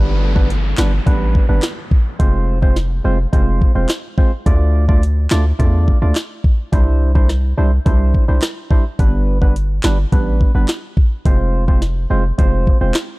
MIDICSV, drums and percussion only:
0, 0, Header, 1, 2, 480
1, 0, Start_track
1, 0, Tempo, 566038
1, 1864, Time_signature, 4, 2, 24, 8
1, 11184, End_track
2, 0, Start_track
2, 0, Title_t, "Drums"
2, 305, Note_on_c, 9, 36, 85
2, 390, Note_off_c, 9, 36, 0
2, 427, Note_on_c, 9, 42, 80
2, 512, Note_off_c, 9, 42, 0
2, 658, Note_on_c, 9, 39, 93
2, 665, Note_on_c, 9, 38, 121
2, 743, Note_off_c, 9, 39, 0
2, 749, Note_off_c, 9, 38, 0
2, 904, Note_on_c, 9, 36, 91
2, 904, Note_on_c, 9, 42, 68
2, 989, Note_off_c, 9, 36, 0
2, 989, Note_off_c, 9, 42, 0
2, 1145, Note_on_c, 9, 36, 87
2, 1230, Note_off_c, 9, 36, 0
2, 1377, Note_on_c, 9, 39, 86
2, 1384, Note_on_c, 9, 38, 111
2, 1385, Note_on_c, 9, 42, 74
2, 1462, Note_off_c, 9, 39, 0
2, 1468, Note_off_c, 9, 38, 0
2, 1469, Note_off_c, 9, 42, 0
2, 1622, Note_on_c, 9, 36, 89
2, 1707, Note_off_c, 9, 36, 0
2, 1864, Note_on_c, 9, 36, 118
2, 1864, Note_on_c, 9, 42, 87
2, 1949, Note_off_c, 9, 36, 0
2, 1949, Note_off_c, 9, 42, 0
2, 2225, Note_on_c, 9, 36, 87
2, 2310, Note_off_c, 9, 36, 0
2, 2344, Note_on_c, 9, 38, 59
2, 2347, Note_on_c, 9, 42, 78
2, 2429, Note_off_c, 9, 38, 0
2, 2432, Note_off_c, 9, 42, 0
2, 2825, Note_on_c, 9, 36, 88
2, 2825, Note_on_c, 9, 42, 72
2, 2910, Note_off_c, 9, 36, 0
2, 2910, Note_off_c, 9, 42, 0
2, 3066, Note_on_c, 9, 36, 86
2, 3150, Note_off_c, 9, 36, 0
2, 3298, Note_on_c, 9, 39, 88
2, 3305, Note_on_c, 9, 38, 112
2, 3306, Note_on_c, 9, 42, 71
2, 3383, Note_off_c, 9, 39, 0
2, 3390, Note_off_c, 9, 38, 0
2, 3390, Note_off_c, 9, 42, 0
2, 3542, Note_on_c, 9, 36, 85
2, 3627, Note_off_c, 9, 36, 0
2, 3784, Note_on_c, 9, 36, 117
2, 3784, Note_on_c, 9, 42, 88
2, 3869, Note_off_c, 9, 36, 0
2, 3869, Note_off_c, 9, 42, 0
2, 4145, Note_on_c, 9, 36, 91
2, 4230, Note_off_c, 9, 36, 0
2, 4267, Note_on_c, 9, 42, 78
2, 4352, Note_off_c, 9, 42, 0
2, 4499, Note_on_c, 9, 39, 95
2, 4505, Note_on_c, 9, 38, 114
2, 4583, Note_off_c, 9, 39, 0
2, 4590, Note_off_c, 9, 38, 0
2, 4745, Note_on_c, 9, 36, 94
2, 4746, Note_on_c, 9, 42, 70
2, 4830, Note_off_c, 9, 36, 0
2, 4831, Note_off_c, 9, 42, 0
2, 4986, Note_on_c, 9, 36, 90
2, 5071, Note_off_c, 9, 36, 0
2, 5219, Note_on_c, 9, 39, 85
2, 5225, Note_on_c, 9, 38, 106
2, 5226, Note_on_c, 9, 42, 72
2, 5303, Note_off_c, 9, 39, 0
2, 5310, Note_off_c, 9, 38, 0
2, 5311, Note_off_c, 9, 42, 0
2, 5463, Note_on_c, 9, 36, 85
2, 5548, Note_off_c, 9, 36, 0
2, 5705, Note_on_c, 9, 36, 120
2, 5705, Note_on_c, 9, 42, 91
2, 5790, Note_off_c, 9, 36, 0
2, 5790, Note_off_c, 9, 42, 0
2, 6066, Note_on_c, 9, 36, 91
2, 6151, Note_off_c, 9, 36, 0
2, 6185, Note_on_c, 9, 37, 60
2, 6185, Note_on_c, 9, 38, 61
2, 6188, Note_on_c, 9, 42, 77
2, 6270, Note_off_c, 9, 37, 0
2, 6270, Note_off_c, 9, 38, 0
2, 6273, Note_off_c, 9, 42, 0
2, 6665, Note_on_c, 9, 36, 88
2, 6665, Note_on_c, 9, 42, 69
2, 6750, Note_off_c, 9, 36, 0
2, 6750, Note_off_c, 9, 42, 0
2, 6906, Note_on_c, 9, 36, 81
2, 6991, Note_off_c, 9, 36, 0
2, 7139, Note_on_c, 9, 39, 85
2, 7145, Note_on_c, 9, 37, 90
2, 7145, Note_on_c, 9, 38, 113
2, 7146, Note_on_c, 9, 42, 72
2, 7224, Note_off_c, 9, 39, 0
2, 7230, Note_off_c, 9, 37, 0
2, 7230, Note_off_c, 9, 38, 0
2, 7231, Note_off_c, 9, 42, 0
2, 7383, Note_on_c, 9, 36, 88
2, 7468, Note_off_c, 9, 36, 0
2, 7625, Note_on_c, 9, 36, 112
2, 7625, Note_on_c, 9, 42, 91
2, 7709, Note_off_c, 9, 42, 0
2, 7710, Note_off_c, 9, 36, 0
2, 7986, Note_on_c, 9, 36, 87
2, 8070, Note_off_c, 9, 36, 0
2, 8108, Note_on_c, 9, 42, 78
2, 8193, Note_off_c, 9, 42, 0
2, 8338, Note_on_c, 9, 39, 95
2, 8345, Note_on_c, 9, 38, 116
2, 8423, Note_off_c, 9, 39, 0
2, 8430, Note_off_c, 9, 38, 0
2, 8585, Note_on_c, 9, 36, 89
2, 8585, Note_on_c, 9, 42, 69
2, 8670, Note_off_c, 9, 36, 0
2, 8670, Note_off_c, 9, 42, 0
2, 8826, Note_on_c, 9, 36, 87
2, 8910, Note_off_c, 9, 36, 0
2, 9059, Note_on_c, 9, 39, 86
2, 9065, Note_on_c, 9, 38, 115
2, 9066, Note_on_c, 9, 42, 75
2, 9143, Note_off_c, 9, 39, 0
2, 9150, Note_off_c, 9, 38, 0
2, 9151, Note_off_c, 9, 42, 0
2, 9302, Note_on_c, 9, 36, 90
2, 9387, Note_off_c, 9, 36, 0
2, 9544, Note_on_c, 9, 36, 118
2, 9544, Note_on_c, 9, 42, 89
2, 9629, Note_off_c, 9, 36, 0
2, 9629, Note_off_c, 9, 42, 0
2, 9905, Note_on_c, 9, 36, 90
2, 9990, Note_off_c, 9, 36, 0
2, 10023, Note_on_c, 9, 38, 60
2, 10026, Note_on_c, 9, 42, 77
2, 10108, Note_off_c, 9, 38, 0
2, 10111, Note_off_c, 9, 42, 0
2, 10504, Note_on_c, 9, 36, 91
2, 10504, Note_on_c, 9, 42, 68
2, 10589, Note_off_c, 9, 36, 0
2, 10589, Note_off_c, 9, 42, 0
2, 10745, Note_on_c, 9, 36, 87
2, 10830, Note_off_c, 9, 36, 0
2, 10976, Note_on_c, 9, 39, 90
2, 10983, Note_on_c, 9, 38, 110
2, 10984, Note_on_c, 9, 42, 74
2, 11061, Note_off_c, 9, 39, 0
2, 11068, Note_off_c, 9, 38, 0
2, 11069, Note_off_c, 9, 42, 0
2, 11184, End_track
0, 0, End_of_file